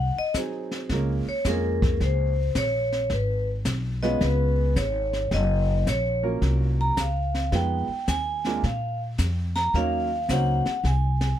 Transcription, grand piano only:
0.36 F#3 C4 D#4 G#4
0.91 G#3 A#3 C#4 F4 A#4
1.46 G#3 A#3 C#4 F4 G#4
4.03 G#3 B3 C#4 F4 B4
6.23 F#3 A#3 C#4 F4 A#4
7.52 G#3 B3 D#4 F4 B4
8.46 G#3 A#3 D4 F4 A#4
9.75 F#3 A#3 C#4 D#4 A#4
10.30 F#3 A#3 C#4 D#4 C5

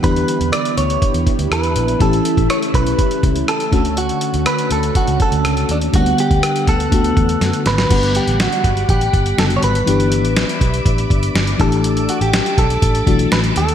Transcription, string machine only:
Already playing: D3 G3
0.04 B3 E4
2.00 C#3 A3
3.72 D3 A3 C#4 F#4
5.93 D3 G3 B3 F#5
6.92 D3 A3
7.90 G3 D5 F#5 B5
9.86 B4 D5 E5 D6
11.59 A4 E5

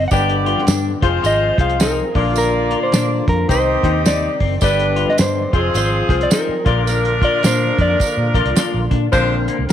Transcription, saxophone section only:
0.11 B3 G4 D5
1.02 G#3 F4 C5
2.16 A#3 F4 D5
3.49 C4 G4 D#5
4.62 G3 D4 B4
5.54 F3 C4 G#4
6.67 F3 D4 A#4
9.12 F3 D4 C5

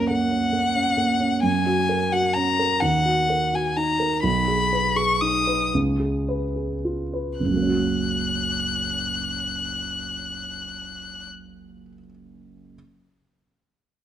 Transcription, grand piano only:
Already playing: F#2 A#3 C#4 F#4 F#5
0.10 A#3
0.31 C#4
0.53 A#3
0.75 C#4
0.97 A#3
1.20 C#4
1.43 F#2
1.66 F#4
1.89 A#4
2.13 F#4
2.36 C#4
2.59 A#4
2.82 D#2
3.05 F#4
3.30 A#4
3.53 F#4
3.77 D#4
4.00 A#4
4.23 B1
4.48 G#4
4.73 B4
4.96 G#4
5.22 D#4
5.47 B4
5.74 C#2
6.00 G#4
6.29 B4
6.56 G#4
6.85 F4
7.13 B4
7.40 F#1
7.46 C#2
7.51 F#3
7.56 A#3
7.62 C#4
7.67 F#4

